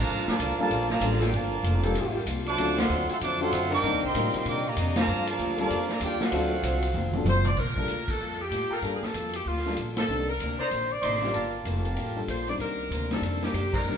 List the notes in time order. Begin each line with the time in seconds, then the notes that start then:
Already playing: D3 F3 A#3
0.00 F4 D5 A5 A#5
0.08 G2 G3 A#3 F4 A4
0.27 D3 F3 A#3 A#4 D5, muted upright bass stroke, snare
0.31 F4 A5
0.39 C2 G3 A#3 F4 A4, hi-hat pedal, ride
0.58 D3 F3 G3 A#3 D4 F4 A4, muted upright bass stroke
0.62 F4 A#4 D5 A5
0.70 A#1 G3 A#3 F4 A4, ride
0.90 D3 F3 A#3 F4 D5 A5 A#5, snare
1.00 A1 G3 A#3 D4 F4 A4, hi-hat pedal, ride
1.05 F4 A4
1.12 snare
1.20 G3 A#3 D4 F4 G4 A4 A#4 D5 G5, snare, ride
1.32 G1 D3 F3 G3 A#3 F4 A#4 D5 A5, ride
1.36 F4 A4
1.63 F1 G3 A#3 F4 A4, hi-hat pedal, ride
1.83 G3 A#3 D4 F4 A4, ride
1.95 A1 G3 A#3 F4, ride
1.99 A4
2.15 G3 A#3 F4 G4
2.25 C2 G3 A#3 F4 A4, hi-hat pedal, ride
2.46 F#3 A3 D4 C5 F#5 A5 D6, ride
2.57 D2 D3 F#3 C4 D4 F4 A4, ride
2.61 F4
2.78 F#3 A3 C4 A4 F5 F#5 C6, snare, ride
2.89 D#2 D3 F#3 C4 D4 F4 C5, hi-hat pedal
3.08 F#3 A3 C4 A4 F5 F#5 C6, muted upright bass stroke, ride
3.20 F2 D3 F#3 A3 C4 D4 F4 C5 F#5 A5 D6, ride
3.41 F#3 A3 C4 D4 F4 A4 F5 F#5 C6
3.51 F#2 D3 F#3 C4 F4, hi-hat pedal, ride
3.71 D#3 G3 A#3 C4 D4 A#4 D#5 G5 D6, ride
3.83 G2 C3 D#3 G3 A#3 C4 D4 D#4 A#4, ride
3.93 D#2
4.02 C2 D#3 G3 C4 A#4 D#5 G5 C6
4.14 A2 C3 D#3 G3 A#3 C4 D4 D#4 F4 A#4, hi-hat pedal, ride
4.32 D#3 G3 C4, muted upright bass stroke, ride
4.37 A#4 D#5 G5 C6
4.45 A#2 C3 D#3 G3 A#3 D4, ride
4.49 D4 A#4 D#5 G5 D6
4.65 D#3 G3 A#3 D5 D#5 A#5
4.69 G4
4.76 F2 C3 D#3 A#3 D4, hi-hat pedal, ride
4.96 D3 F3 A#3 F4 D5 A#5, snare, ride
5.00 A5
5.08 G2 G3 A#3 F4 A4
5.27 D3 F3 A#3 F4 A#4 D5 A5, ride
5.38 D2 G3 A#3 F4 A4, hi-hat pedal
5.58 D3 F3 G3 A#3 D4 F4 A4 A#4 D5 A5, ride
5.70 F2 G3 A#3 F4 A4, ride
5.89 D3 F3 A#3 F4 A4 D5 A#5, snare
6.00 D#2 G3 A#3 D4 F4 G4 A4 D5, hi-hat pedal, ride
6.04 A#4 G5
6.20 A3 C4 F#4 A4 F5 F#5, muted upright bass stroke, snare
6.31 D2 D3 F#3 C4 D4 F4 A4 C5, ride
6.63 C2 D3 F#3 C4 D4 F4 C5, hi-hat pedal, ride
6.82 ride
6.94 F1 D3 F#3 C4 F4, high tom
7.13 F#3 C4 D4 F4 A4, high tom
7.24 F#1 D3 F#3 C4 F4, hi-hat pedal, high tom
7.30 C5
7.45 D5, mid tom
7.57 A#1 G3 A#3 F4 A#4, kick, crash
7.61 A4
7.77 G3 A#3 D4 F4 A4, kick
7.88 D2 G3 A#3 F4 A4, hi-hat pedal, ride
8.08 A4, kick, crash
8.19 F2 G3 A#3 F4 A4
8.42 G4
8.51 A2 G3 A#3 F4 A4, hi-hat pedal, ride
8.70 F4 A4 A#4 G5, muted upright bass stroke
8.82 G2 G3 A#3 D4 F4 A4, ride
8.96 G#4
9.01 A4, muted upright bass stroke, snare
9.14 F2 G3 A#3 F4 A4, hi-hat pedal, ride
9.33 G4, ride
9.45 D2 G3 A#3 F4 A4
9.56 snare
9.66 G3 A#3 D4 F4 A4, snare
9.76 A#1 G3 A#3 F4 A4, hi-hat pedal, ride
9.97 A4, snare, ride
10.08 C2 C3 D#3 G3 A#3 C4 D4 D#4 A#4
10.29 A#4
10.39 D2 C3 D#3 A#3 D4, hi-hat pedal, ride
10.59 D#4 C5 D5 A#5, muted upright bass stroke
10.71 A#1 C3 D#3 A#3 D4, ride
10.92 D5
11.02 A1 C3 D#3 A#3 D4 D#4 C5 D5 C6, hi-hat pedal, ride
11.13 snare
11.22 G3 A#3 D4 F4 G4, snare, ride
11.33 G1 G3 A#3 F4 G4 A4 A#4 F5 A5, ride
11.65 F1 G3 A#3 F4 A4, hi-hat pedal, ride
11.85 ride
11.96 A1 G3 A#3 F4 A4, ride
12.16 G3 A#3 D4 F4 A4
12.27 A#1 G3 A#3 F4 A4 C5, hi-hat pedal, ride
12.47 G3 C4 D4 D#4 A#4 D5, ride
12.58 C2 C3 D#3 A#3 D4 A#4, ride
12.90 D2 C3 D#3 A#3, hi-hat pedal, ride
12.94 D4
13.11 G3 C4 D4 D#4 A4 A#4, snare, ride
13.21 F2 C3 D#3 A#3, ride
13.25 D4 A4
13.42 G3 C4 D4 D#4 G4 A#4, snare
13.53 F#2 C3 D#3 A#3 D4, hi-hat pedal, ride
13.73 D#4 A#4 C5 D5 A#5, kick, crash
13.84 G2 C3 D#3 G3 A#3 C4 D4 D#4 A#4